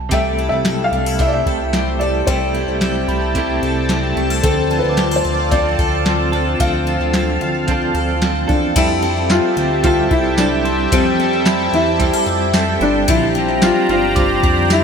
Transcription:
Already playing: A5
0.09 C2 C3 G3 C4 G4 A4 G5 A5, kick, closed hi-hat
0.13 A3 E5
0.39 E4
0.49 C2 E5
0.65 A4, snare, closed hi-hat
0.84 F5
0.92 C2 D4
1.06 E4
1.19 C3 G3 A3 C4 E5, kick, closed hi-hat
1.23 E4
1.27 D5
1.34 E5
1.46 C2 A4, kick
1.73 C4, snare, closed hi-hat
1.99 A3 E4 A4 D5
2.03 G3
2.25 C2 C3 G3 A4 C5, kick, closed hi-hat
2.30 A3 E4
2.55 E4
2.67 C2
2.81 A4, snare, closed hi-hat
3.08 C2 E4 B5
3.34 C3 G3 A3 C4, kick, closed hi-hat
3.38 E4
3.62 C2 A4
3.89 C4, snare, closed hi-hat
4.15 C2 A3 E4 G4
4.20 G3
4.30 A4
4.42 D2 D3 F3 C4 F4 A4 D5, kick, closed hi-hat
4.47 D4 A4
4.71 F4 A5
4.79 B4
4.84 D2
4.89 D6
4.97 G4, snare, closed hi-hat
5.11 A4
5.16 C5
5.25 D2 F4
5.51 F3 C4 D4 D5, kick, closed hi-hat
5.55 A4
5.78 D2 A4, kick
6.06 C4, snare, closed hi-hat
6.32 D4 A4
6.36 C4
6.58 D2 D3 F3 C4 A4 F5, kick, closed hi-hat
6.63 D4 A4
6.87 F4
7.00 D2
7.13 A4, snare, closed hi-hat
7.41 D2 F4
7.67 F3 C4 D4 A4, kick, closed hi-hat
7.94 D2 A4
8.22 C4, snare, closed hi-hat
8.48 E2 D4 A4 G5, kick
8.52 C4
8.76 F2 F3 G3 C4 E4 G4 A4 E5 G5 A5, kick, closed hi-hat, crash
9.02 C4 A4 G5
9.06 C4
9.30 F4, snare, closed hi-hat, tambourine
9.57 D2 C4
9.83 G3 C4 E4 F4 A4, kick, closed hi-hat
10.11 C2 E4, kick
10.37 G3 C4 D4 E4 A4, snare, closed hi-hat, tambourine
10.41 A4
10.65 C4 C6
10.91 F2 F3 G3 C4 E4 A4, kick, closed hi-hat
11.18 C4 E4 A4
11.22 C4
11.46 E4 B5, snare, closed hi-hat, tambourine
11.73 E2 C4 E4
11.99 G3 C4 E4 G4, kick, closed hi-hat
12.03 A4
12.13 A4
12.26 F2 E4
12.53 G3 C4 E4 A4, snare, closed hi-hat, tambourine
12.80 G1 C4 D4 G5
13.08 A#1 A#2 D3 F3 G3 C4 E4 F4 G4 C5 D5 A#5, kick, closed hi-hat
13.33 C4 F4
13.38 G3
13.62 D4 F4, snare, closed hi-hat, tambourine
13.89 G1 C4 F4
14.15 D3 G3 C4 G4 D6, kick, closed hi-hat
14.19 F4
14.43 F2 D4, kick
14.69 D3 G3 C4 E4 G4, snare, closed hi-hat, tambourine

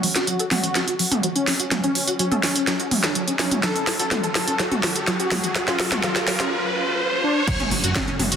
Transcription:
Already playing: F#4 C#5 G#5, riser
0.03 F#3, open hi-hat
0.15 F#4, snare, closed hi-hat
0.27 F#3, closed hi-hat
0.39 A4, closed hi-hat
0.51 F#3 F#4, snare, open hi-hat, mid tom
0.63 C#4, closed hi-hat
0.75 F#3, snare, closed hi-hat
0.87 F#4, closed hi-hat
0.99 F#3, open hi-hat
1.12 A4, closed hi-hat, mid tom
1.23 F#3, closed hi-hat
1.35 C#4, closed hi-hat
1.47 F#3, snare, open hi-hat
1.60 F#4, closed hi-hat
1.71 F#3, snare, closed hi-hat, mid tom
1.84 C#4, closed hi-hat
1.95 F#3, open hi-hat
2.08 F#4, closed hi-hat
2.19 F#3 C#4, closed hi-hat
2.31 A4, closed hi-hat, mid tom
2.43 F#3 C#4, snare, open hi-hat
2.56 C#4, closed hi-hat
2.67 F#3, snare, closed hi-hat
2.80 F#4, closed hi-hat
2.91 F#3, open hi-hat, mid tom
3.03 A4, snare, closed hi-hat
3.15 F#3, closed hi-hat
3.27 C#4, closed hi-hat
3.39 F#3 C#4, snare, open hi-hat
3.51 F#4, closed hi-hat, mid tom
3.63 F#3 A4, snare, closed hi-hat
3.75 C#4, closed hi-hat
3.87 F#3, snare, open hi-hat
3.99 F#4 A4, closed hi-hat
4.11 F#3, snare, closed hi-hat, mid tom
4.23 A4, closed hi-hat
4.35 F#3 A4, snare, open hi-hat
4.47 C#4, closed hi-hat
4.59 F#3, snare, closed hi-hat
4.71 F#4, closed hi-hat, mid tom
4.83 F#3, snare, open hi-hat
4.96 A4, closed hi-hat
5.07 F#3, snare, closed hi-hat
5.19 C#4 F#4, closed hi-hat
5.31 F#3, snare, open hi-hat, mid tom
5.44 F#4, closed hi-hat
5.55 F#3, snare, closed hi-hat
5.67 C#4 F4, snare, closed hi-hat
5.79 F#3, snare, open hi-hat
5.91 F#4, snare, closed hi-hat, mid tom
6.03 F#3 F4, snare, closed hi-hat
6.15 A4, snare, closed hi-hat
6.27 F#3 F4, snare, open hi-hat
6.40 C#4, snare, closed hi-hat
7.24 D4
7.47 F#3 F#4 A4 C#5, kick, closed hi-hat, crash, impact
7.60 C#4, closed hi-hat, mid tom
7.71 F#1 F#3, open hi-hat
7.84 F#2 F#4, closed hi-hat
7.95 F#3, kick, snare, closed hi-hat
8.07 C#4, closed hi-hat
8.19 F#1 F#3, open hi-hat, mid tom
8.32 F#1 F#4, closed hi-hat

